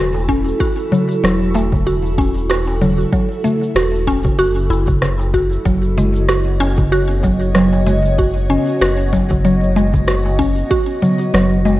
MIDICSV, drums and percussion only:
0, 0, Header, 1, 3, 480
1, 0, Start_track
1, 0, Tempo, 631579
1, 459, Time_signature, 4, 2, 24, 8
1, 8967, End_track
2, 0, Start_track
2, 0, Title_t, "Darbuka"
2, 107, Note_on_c, 9, 62, 32
2, 108, Note_on_c, 9, 63, 55
2, 183, Note_off_c, 9, 62, 0
2, 184, Note_off_c, 9, 63, 0
2, 215, Note_on_c, 9, 62, 35
2, 291, Note_off_c, 9, 62, 0
2, 463, Note_on_c, 9, 63, 35
2, 539, Note_off_c, 9, 63, 0
2, 697, Note_on_c, 9, 64, 79
2, 773, Note_off_c, 9, 64, 0
2, 1173, Note_on_c, 9, 63, 68
2, 1249, Note_off_c, 9, 63, 0
2, 1310, Note_on_c, 9, 62, 35
2, 1315, Note_on_c, 9, 64, 93
2, 1386, Note_off_c, 9, 62, 0
2, 1391, Note_off_c, 9, 64, 0
2, 1658, Note_on_c, 9, 62, 55
2, 1734, Note_off_c, 9, 62, 0
2, 1895, Note_on_c, 9, 62, 57
2, 1971, Note_off_c, 9, 62, 0
2, 2032, Note_on_c, 9, 63, 62
2, 2108, Note_off_c, 9, 63, 0
2, 2141, Note_on_c, 9, 64, 92
2, 2217, Note_off_c, 9, 64, 0
2, 2382, Note_on_c, 9, 63, 39
2, 2458, Note_off_c, 9, 63, 0
2, 2624, Note_on_c, 9, 64, 69
2, 2700, Note_off_c, 9, 64, 0
2, 3096, Note_on_c, 9, 63, 62
2, 3172, Note_off_c, 9, 63, 0
2, 3229, Note_on_c, 9, 64, 85
2, 3230, Note_on_c, 9, 62, 32
2, 3305, Note_off_c, 9, 64, 0
2, 3306, Note_off_c, 9, 62, 0
2, 3575, Note_on_c, 9, 62, 59
2, 3651, Note_off_c, 9, 62, 0
2, 3705, Note_on_c, 9, 64, 89
2, 3781, Note_off_c, 9, 64, 0
2, 3948, Note_on_c, 9, 63, 50
2, 3952, Note_on_c, 9, 62, 31
2, 4024, Note_off_c, 9, 63, 0
2, 4028, Note_off_c, 9, 62, 0
2, 4062, Note_on_c, 9, 62, 28
2, 4138, Note_off_c, 9, 62, 0
2, 4298, Note_on_c, 9, 63, 31
2, 4374, Note_off_c, 9, 63, 0
2, 4539, Note_on_c, 9, 64, 77
2, 4615, Note_off_c, 9, 64, 0
2, 5020, Note_on_c, 9, 63, 54
2, 5096, Note_off_c, 9, 63, 0
2, 5152, Note_on_c, 9, 62, 31
2, 5155, Note_on_c, 9, 64, 94
2, 5228, Note_off_c, 9, 62, 0
2, 5231, Note_off_c, 9, 64, 0
2, 5493, Note_on_c, 9, 62, 57
2, 5569, Note_off_c, 9, 62, 0
2, 5739, Note_on_c, 9, 62, 69
2, 5815, Note_off_c, 9, 62, 0
2, 5872, Note_on_c, 9, 63, 51
2, 5948, Note_off_c, 9, 63, 0
2, 5977, Note_on_c, 9, 64, 82
2, 6053, Note_off_c, 9, 64, 0
2, 6224, Note_on_c, 9, 63, 35
2, 6300, Note_off_c, 9, 63, 0
2, 6458, Note_on_c, 9, 64, 72
2, 6534, Note_off_c, 9, 64, 0
2, 6941, Note_on_c, 9, 63, 56
2, 7017, Note_off_c, 9, 63, 0
2, 7076, Note_on_c, 9, 64, 92
2, 7077, Note_on_c, 9, 62, 39
2, 7152, Note_off_c, 9, 64, 0
2, 7153, Note_off_c, 9, 62, 0
2, 7424, Note_on_c, 9, 62, 56
2, 7500, Note_off_c, 9, 62, 0
2, 7555, Note_on_c, 9, 64, 82
2, 7631, Note_off_c, 9, 64, 0
2, 7791, Note_on_c, 9, 62, 32
2, 7795, Note_on_c, 9, 63, 52
2, 7867, Note_off_c, 9, 62, 0
2, 7871, Note_off_c, 9, 63, 0
2, 7901, Note_on_c, 9, 62, 31
2, 7977, Note_off_c, 9, 62, 0
2, 8137, Note_on_c, 9, 63, 32
2, 8213, Note_off_c, 9, 63, 0
2, 8380, Note_on_c, 9, 64, 70
2, 8456, Note_off_c, 9, 64, 0
2, 8861, Note_on_c, 9, 63, 57
2, 8937, Note_off_c, 9, 63, 0
2, 8967, End_track
3, 0, Start_track
3, 0, Title_t, "Drums"
3, 120, Note_on_c, 9, 82, 22
3, 196, Note_off_c, 9, 82, 0
3, 216, Note_on_c, 9, 36, 61
3, 228, Note_on_c, 9, 82, 70
3, 292, Note_off_c, 9, 36, 0
3, 304, Note_off_c, 9, 82, 0
3, 363, Note_on_c, 9, 82, 35
3, 439, Note_off_c, 9, 82, 0
3, 457, Note_on_c, 9, 36, 109
3, 472, Note_on_c, 9, 82, 46
3, 533, Note_off_c, 9, 36, 0
3, 548, Note_off_c, 9, 82, 0
3, 601, Note_on_c, 9, 82, 22
3, 677, Note_off_c, 9, 82, 0
3, 709, Note_on_c, 9, 82, 72
3, 785, Note_off_c, 9, 82, 0
3, 842, Note_on_c, 9, 82, 34
3, 918, Note_off_c, 9, 82, 0
3, 946, Note_on_c, 9, 37, 99
3, 952, Note_on_c, 9, 82, 43
3, 1022, Note_off_c, 9, 37, 0
3, 1028, Note_off_c, 9, 82, 0
3, 1084, Note_on_c, 9, 82, 21
3, 1160, Note_off_c, 9, 82, 0
3, 1190, Note_on_c, 9, 82, 81
3, 1266, Note_off_c, 9, 82, 0
3, 1310, Note_on_c, 9, 36, 103
3, 1326, Note_on_c, 9, 82, 34
3, 1386, Note_off_c, 9, 36, 0
3, 1402, Note_off_c, 9, 82, 0
3, 1434, Note_on_c, 9, 82, 43
3, 1510, Note_off_c, 9, 82, 0
3, 1565, Note_on_c, 9, 82, 25
3, 1641, Note_off_c, 9, 82, 0
3, 1657, Note_on_c, 9, 36, 104
3, 1672, Note_on_c, 9, 82, 74
3, 1733, Note_off_c, 9, 36, 0
3, 1748, Note_off_c, 9, 82, 0
3, 1804, Note_on_c, 9, 82, 38
3, 1880, Note_off_c, 9, 82, 0
3, 1905, Note_on_c, 9, 37, 93
3, 1911, Note_on_c, 9, 82, 42
3, 1981, Note_off_c, 9, 37, 0
3, 1987, Note_off_c, 9, 82, 0
3, 2041, Note_on_c, 9, 82, 22
3, 2117, Note_off_c, 9, 82, 0
3, 2147, Note_on_c, 9, 82, 74
3, 2223, Note_off_c, 9, 82, 0
3, 2279, Note_on_c, 9, 82, 34
3, 2355, Note_off_c, 9, 82, 0
3, 2376, Note_on_c, 9, 36, 114
3, 2387, Note_on_c, 9, 82, 43
3, 2452, Note_off_c, 9, 36, 0
3, 2463, Note_off_c, 9, 82, 0
3, 2521, Note_on_c, 9, 82, 21
3, 2597, Note_off_c, 9, 82, 0
3, 2624, Note_on_c, 9, 82, 75
3, 2700, Note_off_c, 9, 82, 0
3, 2759, Note_on_c, 9, 82, 33
3, 2835, Note_off_c, 9, 82, 0
3, 2858, Note_on_c, 9, 37, 98
3, 2864, Note_on_c, 9, 82, 46
3, 2934, Note_off_c, 9, 37, 0
3, 2940, Note_off_c, 9, 82, 0
3, 3002, Note_on_c, 9, 82, 23
3, 3078, Note_off_c, 9, 82, 0
3, 3096, Note_on_c, 9, 36, 54
3, 3106, Note_on_c, 9, 82, 79
3, 3172, Note_off_c, 9, 36, 0
3, 3182, Note_off_c, 9, 82, 0
3, 3229, Note_on_c, 9, 36, 107
3, 3240, Note_on_c, 9, 82, 34
3, 3305, Note_off_c, 9, 36, 0
3, 3316, Note_off_c, 9, 82, 0
3, 3349, Note_on_c, 9, 82, 43
3, 3425, Note_off_c, 9, 82, 0
3, 3478, Note_on_c, 9, 82, 24
3, 3554, Note_off_c, 9, 82, 0
3, 3587, Note_on_c, 9, 82, 73
3, 3663, Note_off_c, 9, 82, 0
3, 3710, Note_on_c, 9, 36, 108
3, 3719, Note_on_c, 9, 82, 36
3, 3786, Note_off_c, 9, 36, 0
3, 3795, Note_off_c, 9, 82, 0
3, 3817, Note_on_c, 9, 37, 91
3, 3822, Note_on_c, 9, 82, 44
3, 3893, Note_off_c, 9, 37, 0
3, 3898, Note_off_c, 9, 82, 0
3, 3958, Note_on_c, 9, 82, 23
3, 4034, Note_off_c, 9, 82, 0
3, 4057, Note_on_c, 9, 36, 56
3, 4065, Note_on_c, 9, 82, 71
3, 4133, Note_off_c, 9, 36, 0
3, 4141, Note_off_c, 9, 82, 0
3, 4195, Note_on_c, 9, 82, 35
3, 4271, Note_off_c, 9, 82, 0
3, 4297, Note_on_c, 9, 36, 103
3, 4301, Note_on_c, 9, 82, 43
3, 4373, Note_off_c, 9, 36, 0
3, 4377, Note_off_c, 9, 82, 0
3, 4437, Note_on_c, 9, 82, 22
3, 4513, Note_off_c, 9, 82, 0
3, 4544, Note_on_c, 9, 82, 66
3, 4620, Note_off_c, 9, 82, 0
3, 4675, Note_on_c, 9, 82, 33
3, 4751, Note_off_c, 9, 82, 0
3, 4776, Note_on_c, 9, 37, 90
3, 4782, Note_on_c, 9, 82, 43
3, 4852, Note_off_c, 9, 37, 0
3, 4858, Note_off_c, 9, 82, 0
3, 4918, Note_on_c, 9, 82, 20
3, 4994, Note_off_c, 9, 82, 0
3, 5024, Note_on_c, 9, 82, 78
3, 5100, Note_off_c, 9, 82, 0
3, 5151, Note_on_c, 9, 36, 104
3, 5155, Note_on_c, 9, 82, 34
3, 5227, Note_off_c, 9, 36, 0
3, 5231, Note_off_c, 9, 82, 0
3, 5266, Note_on_c, 9, 82, 43
3, 5342, Note_off_c, 9, 82, 0
3, 5398, Note_on_c, 9, 82, 23
3, 5474, Note_off_c, 9, 82, 0
3, 5499, Note_on_c, 9, 36, 97
3, 5499, Note_on_c, 9, 82, 71
3, 5575, Note_off_c, 9, 36, 0
3, 5575, Note_off_c, 9, 82, 0
3, 5634, Note_on_c, 9, 82, 36
3, 5710, Note_off_c, 9, 82, 0
3, 5736, Note_on_c, 9, 37, 93
3, 5742, Note_on_c, 9, 82, 44
3, 5812, Note_off_c, 9, 37, 0
3, 5818, Note_off_c, 9, 82, 0
3, 5877, Note_on_c, 9, 82, 21
3, 5953, Note_off_c, 9, 82, 0
3, 5981, Note_on_c, 9, 82, 75
3, 6057, Note_off_c, 9, 82, 0
3, 6119, Note_on_c, 9, 82, 31
3, 6195, Note_off_c, 9, 82, 0
3, 6220, Note_on_c, 9, 36, 107
3, 6227, Note_on_c, 9, 82, 39
3, 6296, Note_off_c, 9, 36, 0
3, 6303, Note_off_c, 9, 82, 0
3, 6360, Note_on_c, 9, 82, 21
3, 6436, Note_off_c, 9, 82, 0
3, 6469, Note_on_c, 9, 82, 70
3, 6545, Note_off_c, 9, 82, 0
3, 6602, Note_on_c, 9, 82, 30
3, 6678, Note_off_c, 9, 82, 0
3, 6704, Note_on_c, 9, 37, 89
3, 6710, Note_on_c, 9, 82, 40
3, 6780, Note_off_c, 9, 37, 0
3, 6786, Note_off_c, 9, 82, 0
3, 6841, Note_on_c, 9, 82, 21
3, 6917, Note_off_c, 9, 82, 0
3, 6941, Note_on_c, 9, 36, 50
3, 6949, Note_on_c, 9, 82, 75
3, 7017, Note_off_c, 9, 36, 0
3, 7025, Note_off_c, 9, 82, 0
3, 7074, Note_on_c, 9, 36, 98
3, 7082, Note_on_c, 9, 82, 33
3, 7150, Note_off_c, 9, 36, 0
3, 7158, Note_off_c, 9, 82, 0
3, 7188, Note_on_c, 9, 82, 41
3, 7264, Note_off_c, 9, 82, 0
3, 7320, Note_on_c, 9, 82, 22
3, 7396, Note_off_c, 9, 82, 0
3, 7425, Note_on_c, 9, 82, 72
3, 7501, Note_off_c, 9, 82, 0
3, 7553, Note_on_c, 9, 36, 99
3, 7560, Note_on_c, 9, 82, 33
3, 7629, Note_off_c, 9, 36, 0
3, 7636, Note_off_c, 9, 82, 0
3, 7660, Note_on_c, 9, 37, 89
3, 7666, Note_on_c, 9, 82, 42
3, 7736, Note_off_c, 9, 37, 0
3, 7742, Note_off_c, 9, 82, 0
3, 7797, Note_on_c, 9, 82, 22
3, 7873, Note_off_c, 9, 82, 0
3, 7900, Note_on_c, 9, 36, 54
3, 7907, Note_on_c, 9, 82, 69
3, 7976, Note_off_c, 9, 36, 0
3, 7983, Note_off_c, 9, 82, 0
3, 8040, Note_on_c, 9, 82, 30
3, 8116, Note_off_c, 9, 82, 0
3, 8140, Note_on_c, 9, 36, 104
3, 8148, Note_on_c, 9, 82, 41
3, 8216, Note_off_c, 9, 36, 0
3, 8224, Note_off_c, 9, 82, 0
3, 8281, Note_on_c, 9, 82, 21
3, 8357, Note_off_c, 9, 82, 0
3, 8387, Note_on_c, 9, 82, 67
3, 8463, Note_off_c, 9, 82, 0
3, 8518, Note_on_c, 9, 82, 32
3, 8594, Note_off_c, 9, 82, 0
3, 8622, Note_on_c, 9, 37, 99
3, 8628, Note_on_c, 9, 82, 41
3, 8698, Note_off_c, 9, 37, 0
3, 8704, Note_off_c, 9, 82, 0
3, 8759, Note_on_c, 9, 82, 21
3, 8835, Note_off_c, 9, 82, 0
3, 8867, Note_on_c, 9, 82, 75
3, 8943, Note_off_c, 9, 82, 0
3, 8967, End_track
0, 0, End_of_file